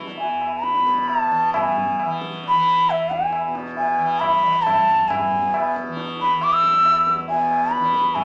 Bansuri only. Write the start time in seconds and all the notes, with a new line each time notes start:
0.20 G#5
0.63 B5
1.09 A5
1.54 G#5
2.48 B5
2.90 E5
3.13 G#5
3.78 G#5
4.20 B5
4.62 A5
5.09 G#5
6.21 B5
6.43 D6
6.53 E6
7.29 G#5
7.73 B5
8.15 G#5